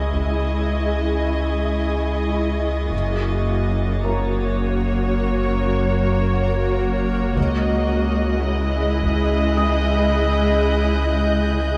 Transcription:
0, 0, Header, 1, 10, 480
1, 0, Start_track
1, 0, Tempo, 1111111
1, 1264, Time_signature, 4, 2, 24, 8
1, 5087, End_track
2, 0, Start_track
2, 0, Title_t, "Violin section"
2, 0, Program_c, 0, 48
2, 0, Note_on_c, 0, 85, 26
2, 0, Note_on_c, 0, 87, 27
2, 0, Note_on_c, 0, 92, 27
2, 1314, Note_off_c, 0, 92, 0
2, 1314, Note_on_c, 0, 93, 27
2, 1969, Note_off_c, 0, 93, 0
2, 2449, Note_off_c, 0, 87, 0
2, 2930, Note_off_c, 0, 85, 0
2, 3190, Note_on_c, 0, 87, 37
2, 3192, Note_on_c, 0, 90, 40
2, 4147, Note_on_c, 0, 91, 36
2, 5087, Note_off_c, 0, 87, 0
2, 5087, Note_off_c, 0, 90, 0
2, 5087, Note_off_c, 0, 91, 0
2, 5087, End_track
3, 0, Start_track
3, 0, Title_t, "Felt piano"
3, 0, Program_c, 1, 0
3, 0, Control_c, 1, 64, 127
3, 0, Note_on_c, 1, 68, 24
3, 0, Note_on_c, 1, 80, 36
3, 1249, Note_off_c, 1, 80, 0
3, 1250, Note_off_c, 1, 68, 0
3, 1270, Control_c, 1, 64, 0
3, 1354, Control_c, 1, 64, 127
3, 1745, Note_on_c, 1, 70, 32
3, 1749, Note_on_c, 1, 82, 31
3, 3167, Note_off_c, 1, 70, 0
3, 3169, Note_off_c, 1, 82, 0
3, 3191, Control_c, 1, 64, 0
3, 3250, Control_c, 1, 64, 127
3, 4135, Note_on_c, 1, 87, 41
3, 5087, Note_off_c, 1, 87, 0
3, 5087, End_track
4, 0, Start_track
4, 0, Title_t, "Violin section"
4, 0, Program_c, 2, 48
4, 0, Note_on_c, 2, 75, 35
4, 1724, Note_off_c, 2, 75, 0
4, 1735, Note_on_c, 2, 73, 45
4, 3179, Note_off_c, 2, 73, 0
4, 3184, Note_on_c, 2, 75, 52
4, 5087, Note_off_c, 2, 75, 0
4, 5087, End_track
5, 0, Start_track
5, 0, Title_t, "Ambient pad"
5, 0, Program_c, 3, 92
5, 0, Note_on_c, 3, 64, 44
5, 0, Note_on_c, 3, 68, 46
5, 0, Note_on_c, 3, 75, 44
5, 1247, Note_off_c, 3, 68, 0
5, 1248, Note_off_c, 3, 64, 0
5, 1249, Note_off_c, 3, 75, 0
5, 1259, Note_on_c, 3, 66, 47
5, 1259, Note_on_c, 3, 73, 52
5, 1261, Note_on_c, 3, 70, 48
5, 3179, Note_on_c, 3, 75, 54
5, 3181, Note_off_c, 3, 66, 0
5, 3181, Note_off_c, 3, 73, 0
5, 3182, Note_off_c, 3, 70, 0
5, 3183, Note_on_c, 3, 68, 53
5, 3184, Note_on_c, 3, 64, 53
5, 5087, Note_off_c, 3, 64, 0
5, 5087, Note_off_c, 3, 68, 0
5, 5087, Note_off_c, 3, 75, 0
5, 5087, End_track
6, 0, Start_track
6, 0, Title_t, "Viola section"
6, 0, Program_c, 4, 48
6, 0, Note_on_c, 4, 56, 30
6, 0, Note_on_c, 4, 64, 32
6, 1248, Note_off_c, 4, 56, 0
6, 1249, Note_off_c, 4, 64, 0
6, 1258, Note_on_c, 4, 66, 40
6, 1262, Note_on_c, 4, 58, 40
6, 3644, Note_off_c, 4, 66, 0
6, 3646, Note_off_c, 4, 58, 0
6, 3664, Note_on_c, 4, 64, 48
6, 3665, Note_on_c, 4, 56, 48
6, 5087, Note_off_c, 4, 56, 0
6, 5087, Note_off_c, 4, 64, 0
6, 5087, End_track
7, 0, Start_track
7, 0, Title_t, "Cello section"
7, 0, Program_c, 5, 48
7, 0, Note_on_c, 5, 37, 35
7, 1245, Note_off_c, 5, 37, 0
7, 1263, Note_on_c, 5, 42, 47
7, 3166, Note_off_c, 5, 42, 0
7, 3185, Note_on_c, 5, 37, 50
7, 5087, Note_off_c, 5, 37, 0
7, 5087, End_track
8, 0, Start_track
8, 0, Title_t, "Sub bass"
8, 0, Program_c, 6, 38
8, 0, Note_on_c, 6, 37, 57
8, 1259, Note_on_c, 6, 30, 59
8, 1265, Note_off_c, 6, 37, 0
8, 3187, Note_on_c, 6, 37, 61
8, 3193, Note_off_c, 6, 30, 0
8, 5087, Note_off_c, 6, 37, 0
8, 5087, End_track
9, 0, Start_track
9, 0, Title_t, "Double bass section"
9, 0, Program_c, 7, 48
9, 1258, Note_on_c, 7, 30, 45
9, 1723, Note_off_c, 7, 30, 0
9, 3180, Note_on_c, 7, 37, 51
9, 3645, Note_off_c, 7, 37, 0
9, 5087, End_track
10, 0, Start_track
10, 0, Title_t, "Taiko and cinematic ensemble drums"
10, 58, Note_on_c, 9, 41, 25
10, 101, Note_off_c, 9, 41, 0
10, 3182, Note_on_c, 9, 41, 45
10, 3225, Note_off_c, 9, 41, 0
10, 3902, Note_on_c, 9, 41, 28
10, 3946, Note_off_c, 9, 41, 0
10, 5087, End_track
0, 0, End_of_file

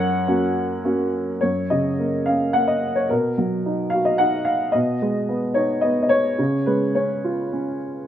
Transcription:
0, 0, Header, 1, 2, 480
1, 0, Start_track
1, 0, Key_signature, 6, "major"
1, 0, Tempo, 567644
1, 1209, Time_signature, 3, 2, 24, 8
1, 1687, Tempo, 548948
1, 5527, Tempo, 569260
1, 6947, End_track
2, 0, Start_track
2, 0, Title_t, "Upright piano"
2, 0, Program_c, 0, 0
2, 0, Control_c, 0, 64, 127
2, 0, Note_on_c, 0, 42, 60
2, 0, Note_on_c, 0, 70, 61
2, 0, Note_on_c, 0, 73, 61
2, 0, Note_on_c, 0, 78, 78
2, 228, Note_on_c, 0, 58, 40
2, 231, Note_on_c, 0, 61, 39
2, 237, Note_on_c, 0, 66, 43
2, 618, Note_off_c, 0, 58, 0
2, 620, Note_off_c, 0, 61, 0
2, 623, Note_off_c, 0, 66, 0
2, 681, Note_off_c, 0, 78, 0
2, 683, Note_off_c, 0, 70, 0
2, 683, Note_off_c, 0, 73, 0
2, 712, Note_on_c, 0, 58, 38
2, 714, Note_on_c, 0, 61, 35
2, 718, Note_on_c, 0, 66, 43
2, 1105, Note_off_c, 0, 58, 0
2, 1107, Note_off_c, 0, 61, 0
2, 1109, Note_off_c, 0, 66, 0
2, 1172, Note_off_c, 0, 42, 0
2, 1190, Note_on_c, 0, 73, 52
2, 1207, Note_on_c, 0, 42, 36
2, 1219, Control_c, 0, 64, 0
2, 1371, Control_c, 0, 64, 127
2, 1439, Note_on_c, 0, 75, 50
2, 1444, Note_on_c, 0, 49, 29
2, 1448, Note_off_c, 0, 73, 0
2, 1680, Note_on_c, 0, 58, 28
2, 1890, Note_off_c, 0, 75, 0
2, 1917, Note_on_c, 0, 77, 51
2, 1928, Note_on_c, 0, 61, 29
2, 2154, Note_off_c, 0, 58, 0
2, 2157, Note_on_c, 0, 78, 55
2, 2167, Note_on_c, 0, 58, 29
2, 2173, Note_off_c, 0, 77, 0
2, 2282, Note_on_c, 0, 75, 51
2, 2290, Note_off_c, 0, 78, 0
2, 2383, Note_off_c, 0, 49, 0
2, 2527, Note_on_c, 0, 73, 49
2, 2538, Note_off_c, 0, 75, 0
2, 2621, Note_off_c, 0, 42, 0
2, 2634, Note_off_c, 0, 61, 0
2, 2640, Note_off_c, 0, 58, 0
2, 2644, Note_off_c, 0, 73, 0
2, 2647, Note_on_c, 0, 70, 51
2, 2658, Note_on_c, 0, 47, 38
2, 2667, Control_c, 0, 64, 0
2, 2832, Control_c, 0, 64, 127
2, 2897, Note_on_c, 0, 54, 34
2, 3142, Note_on_c, 0, 63, 30
2, 3352, Note_on_c, 0, 77, 53
2, 3381, Note_on_c, 0, 66, 31
2, 3393, Note_off_c, 0, 70, 0
2, 3485, Note_on_c, 0, 75, 49
2, 3488, Note_off_c, 0, 77, 0
2, 3598, Note_off_c, 0, 63, 0
2, 3599, Note_on_c, 0, 78, 58
2, 3602, Note_off_c, 0, 75, 0
2, 3611, Note_on_c, 0, 63, 31
2, 3828, Note_off_c, 0, 54, 0
2, 3832, Note_on_c, 0, 77, 54
2, 3856, Note_off_c, 0, 78, 0
2, 4062, Note_off_c, 0, 47, 0
2, 4070, Note_on_c, 0, 75, 60
2, 4078, Note_off_c, 0, 66, 0
2, 4080, Note_off_c, 0, 63, 0
2, 4090, Note_on_c, 0, 47, 40
2, 4091, Note_off_c, 0, 77, 0
2, 4107, Control_c, 0, 64, 0
2, 4268, Control_c, 0, 64, 127
2, 4332, Note_on_c, 0, 56, 37
2, 4566, Note_on_c, 0, 59, 35
2, 4790, Note_on_c, 0, 73, 52
2, 4802, Note_on_c, 0, 63, 33
2, 4815, Note_off_c, 0, 75, 0
2, 5025, Note_on_c, 0, 75, 52
2, 5032, Note_off_c, 0, 59, 0
2, 5044, Note_off_c, 0, 73, 0
2, 5045, Note_on_c, 0, 59, 34
2, 5198, Note_off_c, 0, 75, 0
2, 5211, Note_on_c, 0, 75, 38
2, 5255, Note_off_c, 0, 56, 0
2, 5270, Note_on_c, 0, 73, 69
2, 5278, Note_off_c, 0, 75, 0
2, 5489, Note_off_c, 0, 47, 0
2, 5503, Note_off_c, 0, 63, 0
2, 5513, Note_off_c, 0, 59, 0
2, 5525, Note_on_c, 0, 49, 42
2, 5539, Control_c, 0, 64, 0
2, 5662, Control_c, 0, 64, 127
2, 5758, Note_on_c, 0, 71, 46
2, 5766, Note_on_c, 0, 56, 33
2, 5771, Note_off_c, 0, 73, 0
2, 6002, Note_on_c, 0, 73, 43
2, 6004, Note_on_c, 0, 61, 32
2, 6007, Note_off_c, 0, 71, 0
2, 6249, Note_on_c, 0, 65, 34
2, 6475, Note_off_c, 0, 61, 0
2, 6487, Note_on_c, 0, 61, 32
2, 6693, Note_off_c, 0, 73, 0
2, 6699, Note_off_c, 0, 56, 0
2, 6933, Note_off_c, 0, 49, 0
2, 6947, Note_off_c, 0, 61, 0
2, 6947, Note_off_c, 0, 65, 0
2, 6947, End_track
0, 0, End_of_file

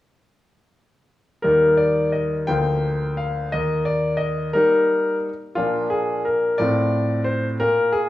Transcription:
0, 0, Header, 1, 2, 480
1, 0, Start_track
1, 0, Key_signature, -3, "major"
1, 0, Tempo, 698487
1, 986, Time_signature, 6, 3, 24, 8
1, 1943, Tempo, 681818
1, 5649, End_track
2, 0, Start_track
2, 0, Title_t, "Grand piano"
2, 0, Program_c, 0, 0
2, 978, Note_on_c, 0, 70, 54
2, 988, Note_on_c, 0, 55, 30
2, 991, Note_on_c, 0, 39, 43
2, 992, Note_on_c, 0, 58, 29
2, 997, Note_on_c, 0, 63, 29
2, 1198, Note_off_c, 0, 70, 0
2, 1219, Note_on_c, 0, 74, 54
2, 1438, Note_off_c, 0, 74, 0
2, 1459, Note_on_c, 0, 75, 41
2, 1604, Note_off_c, 0, 75, 0
2, 1677, Note_off_c, 0, 55, 0
2, 1679, Note_off_c, 0, 58, 0
2, 1682, Note_off_c, 0, 63, 0
2, 1685, Note_off_c, 0, 39, 0
2, 1698, Note_on_c, 0, 79, 66
2, 1706, Note_on_c, 0, 53, 29
2, 1707, Note_on_c, 0, 38, 45
2, 1710, Note_on_c, 0, 58, 30
2, 1718, Note_on_c, 0, 65, 30
2, 2182, Note_off_c, 0, 79, 0
2, 2185, Note_on_c, 0, 77, 52
2, 2398, Note_off_c, 0, 53, 0
2, 2400, Note_off_c, 0, 58, 0
2, 2404, Note_off_c, 0, 65, 0
2, 2405, Note_off_c, 0, 38, 0
2, 2426, Note_off_c, 0, 77, 0
2, 2432, Note_on_c, 0, 75, 57
2, 2442, Note_on_c, 0, 39, 43
2, 2645, Note_off_c, 0, 75, 0
2, 2665, Note_on_c, 0, 74, 54
2, 2888, Note_on_c, 0, 75, 50
2, 2905, Note_off_c, 0, 74, 0
2, 3113, Note_off_c, 0, 75, 0
2, 3134, Note_off_c, 0, 39, 0
2, 3144, Note_on_c, 0, 70, 61
2, 3150, Note_on_c, 0, 58, 34
2, 3154, Note_on_c, 0, 63, 39
2, 3155, Note_on_c, 0, 55, 33
2, 3579, Note_off_c, 0, 70, 0
2, 3670, Note_off_c, 0, 58, 0
2, 3673, Note_off_c, 0, 55, 0
2, 3673, Note_off_c, 0, 63, 0
2, 3862, Note_on_c, 0, 65, 58
2, 3872, Note_on_c, 0, 46, 44
2, 3872, Note_on_c, 0, 53, 32
2, 3875, Note_on_c, 0, 58, 32
2, 3882, Note_on_c, 0, 62, 32
2, 4083, Note_off_c, 0, 65, 0
2, 4105, Note_on_c, 0, 68, 53
2, 4350, Note_off_c, 0, 68, 0
2, 4352, Note_on_c, 0, 70, 45
2, 4565, Note_off_c, 0, 53, 0
2, 4567, Note_off_c, 0, 58, 0
2, 4571, Note_off_c, 0, 62, 0
2, 4572, Note_off_c, 0, 46, 0
2, 4585, Note_on_c, 0, 74, 66
2, 4592, Note_off_c, 0, 70, 0
2, 4594, Note_on_c, 0, 45, 47
2, 4599, Note_on_c, 0, 53, 34
2, 4601, Note_on_c, 0, 60, 35
2, 4606, Note_on_c, 0, 65, 35
2, 5033, Note_off_c, 0, 74, 0
2, 5052, Note_on_c, 0, 72, 55
2, 5198, Note_off_c, 0, 72, 0
2, 5277, Note_off_c, 0, 53, 0
2, 5279, Note_off_c, 0, 60, 0
2, 5281, Note_off_c, 0, 65, 0
2, 5282, Note_off_c, 0, 45, 0
2, 5301, Note_on_c, 0, 70, 67
2, 5307, Note_on_c, 0, 46, 47
2, 5516, Note_off_c, 0, 70, 0
2, 5531, Note_on_c, 0, 68, 62
2, 5649, Note_off_c, 0, 46, 0
2, 5649, Note_off_c, 0, 68, 0
2, 5649, End_track
0, 0, End_of_file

